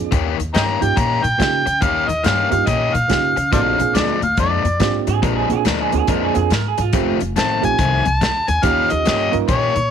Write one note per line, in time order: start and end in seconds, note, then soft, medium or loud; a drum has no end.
0.00 0.11 F2 medium
0.00 0.11 A#3 medium
0.00 0.12 C4 medium
0.00 0.12 D4 soft
0.00 0.12 F4 medium
0.00 0.12 G#4 medium
0.11 0.38 D#2 medium
0.11 0.39 D#3 medium
0.11 0.39 A#3 medium
0.11 0.38 C#4 medium
0.11 0.38 G4 medium
0.11 kick loud
0.11 closed hi-hat medium
0.39 0.54 D#2 medium
0.39 muted overdriven electric guitar stroke soft
0.39 closed hi-hat medium
0.54 0.81 G2 medium
0.54 0.81 D#3 medium
0.54 0.80 A#3 medium
0.54 0.80 C#4 medium
0.54 0.80 G4 medium
0.54 0.62 D#5 medium
0.54 0.63 G5 medium
0.54 0.85 A#5 loud
0.54 snare loud
0.54 closed hi-hat medium
0.81 0.97 G2 medium
0.81 0.95 A#3 medium
0.81 0.95 C#4 medium
0.81 0.96 D#4 medium
0.81 0.96 F4 medium
0.81 0.96 G4 medium
0.81 0.99 G5 medium
0.81 muted overdriven electric guitar stroke medium
0.81 closed hi-hat medium
0.96 1.23 A#2 medium
0.96 1.24 D#3 medium
0.96 1.22 A#3 medium
0.96 1.22 C#4 medium
0.96 1.21 G4 medium
0.96 1.25 A#5 loud
0.96 kick loud
0.96 closed hi-hat medium
1.22 1.39 A#2 medium
1.22 1.83 G5 medium
1.22 muted overdriven electric guitar stroke soft
1.22 closed hi-hat medium
1.38 1.66 C#3 medium
1.38 1.63 A#3 medium
1.38 1.64 C#4 soft
1.38 1.64 D#4 soft
1.38 1.64 F4 soft
1.38 1.64 G4 medium
1.38 muted overdriven electric guitar stroke soft
1.38 kick medium
1.38 snare loud
1.38 closed hi-hat medium
1.66 1.82 C#3 medium
1.66 muted overdriven electric guitar stroke soft
1.66 closed hi-hat medium
1.81 2.08 D#2 medium
1.81 2.09 D#3 medium
1.81 2.08 A#3 medium
1.81 2.08 C#4 medium
1.81 2.07 G4 medium
1.81 2.09 F5 medium
1.81 kick loud
1.81 closed hi-hat medium
2.08 2.24 D#2 medium
2.08 2.27 D#5 medium
2.08 muted overdriven electric guitar stroke soft
2.08 closed hi-hat medium
2.24 2.51 G2 medium
2.24 2.52 D#3 medium
2.24 2.51 A#3 medium
2.24 2.50 C#4 medium
2.24 2.50 G4 medium
2.24 2.50 F5 medium
2.24 snare loud
2.24 closed hi-hat medium
2.51 2.67 G2 medium
2.51 2.65 A#3 medium
2.51 2.66 C#4 medium
2.51 2.66 D#4 medium
2.51 2.66 F4 medium
2.51 2.66 G4 medium
2.51 2.68 F5 medium
2.51 muted overdriven electric guitar stroke medium
2.51 closed hi-hat medium
2.66 2.94 A#2 medium
2.66 2.94 D#3 medium
2.66 2.94 A#3 medium
2.66 2.94 C#4 medium
2.66 2.93 G4 medium
2.66 2.96 D#5 medium
2.66 kick loud
2.66 closed hi-hat medium
2.94 3.09 A#2 medium
2.94 3.52 F5 medium
2.94 muted overdriven electric guitar stroke medium
2.94 closed hi-hat medium
3.08 3.36 C#3 medium
3.08 3.34 A#3 medium
3.08 3.34 C#4 medium
3.08 3.34 D#4 medium
3.08 3.34 F4 medium
3.08 3.35 G4 medium
3.08 muted overdriven electric guitar stroke soft
3.08 kick medium
3.08 snare loud
3.08 closed hi-hat medium
3.36 3.54 C#3 medium
3.36 muted overdriven electric guitar stroke medium
3.36 closed hi-hat medium
3.52 3.79 A#1 medium
3.52 3.80 A#2 medium
3.52 3.80 F3 medium
3.52 3.79 G#3 medium
3.52 3.77 B3 medium
3.52 3.77 C#4 medium
3.52 3.79 D4 medium
3.52 3.77 D#4 medium
3.52 3.77 F#4 medium
3.52 3.78 A4 medium
3.52 3.60 C5 medium
3.52 3.60 D5 medium
3.52 3.97 F5 medium
3.52 kick loud
3.52 closed hi-hat medium
3.79 3.94 A#1 medium
3.79 4.17 A#3 medium
3.79 4.17 C4 medium
3.79 4.17 D4 medium
3.79 4.18 F4 medium
3.79 4.18 G#4 medium
3.79 muted overdriven electric guitar stroke soft
3.79 closed hi-hat medium
3.95 4.21 D2 medium
3.95 4.22 A#2 medium
3.95 4.22 F3 medium
3.95 4.22 G#3 medium
3.95 4.21 D4 medium
3.95 4.22 D5 medium
3.95 snare loud
3.95 closed hi-hat medium
4.22 4.37 D2 medium
4.22 4.37 F5 medium
4.22 muted overdriven electric guitar stroke medium
4.22 closed hi-hat medium
4.37 4.64 F2 loud
4.37 4.65 A#2 medium
4.37 4.65 F3 medium
4.37 4.64 G#3 medium
4.37 4.64 D4 medium
4.37 5.05 D5 medium
4.37 kick loud
4.37 closed hi-hat medium
4.64 4.79 F2 medium
4.64 muted overdriven electric guitar stroke medium
4.64 closed hi-hat medium
4.80 5.06 G#2 medium
4.80 5.44 A#3 medium
4.80 5.45 C4 medium
4.80 5.45 D4 medium
4.80 5.45 F4 medium
4.80 5.45 G4 medium
4.80 muted overdriven electric guitar stroke medium
4.80 kick medium
4.80 snare loud
4.80 closed hi-hat medium
5.07 5.23 G#2 medium
5.07 5.22 G#4 medium
5.07 muted overdriven electric guitar stroke soft
5.07 closed hi-hat medium
5.22 5.49 A#1 medium
5.22 5.50 A#2 medium
5.22 5.49 F3 medium
5.22 5.49 G#3 loud
5.22 5.49 D4 medium
5.22 5.36 A#4 medium
5.22 kick loud
5.22 closed hi-hat medium
5.37 5.51 G#4 medium
5.50 5.64 A#1 medium
5.50 5.64 A#3 medium
5.50 5.64 C4 medium
5.50 5.64 D4 medium
5.50 5.65 F4 medium
5.50 5.65 G#4 medium
5.50 5.66 G#4 medium
5.50 muted overdriven electric guitar stroke soft
5.50 closed hi-hat medium
5.65 5.91 D2 medium
5.65 5.93 A#2 medium
5.65 5.93 F3 medium
5.65 5.92 G#3 medium
5.65 5.92 D4 medium
5.65 5.80 A#4 medium
5.65 snare loud
5.65 closed hi-hat medium
5.81 5.94 G#4 medium
5.92 6.07 D2 medium
5.92 6.33 A#3 medium
5.92 6.33 C4 medium
5.92 6.33 D4 medium
5.92 6.33 F4 medium
5.92 6.34 G#4 medium
5.92 6.09 G#4 medium
5.92 muted overdriven electric guitar stroke soft
5.92 closed hi-hat medium
6.07 6.34 F2 medium
6.07 6.35 A#2 medium
6.07 6.35 F3 medium
6.07 6.35 G#3 medium
6.07 6.34 D4 medium
6.07 6.23 A#4 medium
6.07 kick loud
6.07 closed hi-hat medium
6.24 6.37 G#4 medium
6.34 6.51 F2 medium
6.34 6.49 A#3 medium
6.34 6.49 C4 medium
6.34 6.49 D4 medium
6.34 6.50 F4 medium
6.34 6.50 G#4 medium
6.34 muted overdriven electric guitar stroke soft
6.34 closed hi-hat medium
6.39 6.52 G#4 medium
6.50 6.77 G#2 medium
6.50 6.66 A#4 medium
6.50 muted overdriven electric guitar stroke soft
6.50 snare loud
6.50 closed hi-hat medium
6.68 6.81 G#4 medium
6.78 6.93 G#2 medium
6.78 7.22 F4 medium
6.78 muted overdriven electric guitar stroke soft
6.78 closed hi-hat medium
6.93 7.20 F1 medium
6.93 7.21 F2 medium
6.93 7.21 D#3 medium
6.93 7.18 A3 medium
6.93 7.20 A3 medium
6.93 7.18 C4 medium
6.93 7.20 C4 medium
6.93 7.18 D#4 medium
6.93 7.18 F4 medium
6.93 7.18 G4 medium
6.93 kick loud
6.93 closed hi-hat medium
7.20 7.35 F1 medium
7.20 muted overdriven electric guitar stroke soft
7.20 closed hi-hat medium
7.36 7.62 A1 medium
7.36 7.63 F2 medium
7.36 7.64 D#3 medium
7.36 7.63 A3 medium
7.36 7.63 C4 medium
7.36 7.62 A5 loud
7.36 snare loud
7.36 closed hi-hat medium
7.62 7.78 A1 medium
7.62 7.76 A3 medium
7.62 7.77 C4 medium
7.62 7.77 D#4 medium
7.62 7.77 F4 medium
7.62 7.77 G4 medium
7.62 8.08 G#5 loud
7.62 muted overdriven electric guitar stroke medium
7.62 closed hi-hat medium
7.79 8.05 C2 medium
7.79 8.06 F2 medium
7.79 8.05 D#3 medium
7.79 8.05 A3 medium
7.79 8.05 C4 medium
7.79 kick loud
7.79 closed hi-hat medium
8.05 8.21 C2 medium
8.05 8.50 A5 loud
8.05 muted overdriven electric guitar stroke medium
8.05 closed hi-hat medium
8.21 8.47 D#2 medium
8.21 muted overdriven electric guitar stroke soft
8.21 kick medium
8.21 snare loud
8.21 closed hi-hat medium
8.48 8.63 D#2 medium
8.48 8.65 G#5 medium
8.48 muted overdriven electric guitar stroke soft
8.48 closed hi-hat medium
8.63 8.90 D#2 medium
8.63 8.91 D#3 medium
8.63 9.28 A#3 medium
8.63 8.91 A#3 medium
8.63 9.28 C#4 medium
8.63 8.91 C#4 medium
8.63 9.28 D#4 medium
8.63 9.28 F4 medium
8.63 9.28 G4 medium
8.63 8.90 G4 loud
8.63 8.92 F5 loud
8.63 kick loud
8.63 closed hi-hat medium
8.90 9.06 D#2 medium
8.90 9.33 D#5 loud
8.90 muted overdriven electric guitar stroke soft
8.90 closed hi-hat medium
9.05 9.33 G2 medium
9.05 9.33 D#3 medium
9.05 9.33 A#3 medium
9.05 9.32 C#4 medium
9.05 9.32 G4 medium
9.05 snare loud
9.05 closed hi-hat medium
9.31 9.48 G2 medium
9.31 9.46 A#3 medium
9.31 9.47 C#4 medium
9.31 9.47 D#4 medium
9.31 9.47 F4 medium
9.31 9.47 A#4 medium
9.31 muted overdriven electric guitar stroke soft
9.31 closed hi-hat medium
9.48 9.75 A#2 medium
9.48 9.76 D#3 medium
9.48 9.74 A#3 medium
9.48 9.75 C#4 medium
9.48 9.74 G4 medium
9.48 9.91 C#5 medium
9.48 kick loud
9.48 closed hi-hat medium
9.75 9.91 A#2 medium
9.75 muted overdriven electric guitar stroke medium
9.75 closed hi-hat medium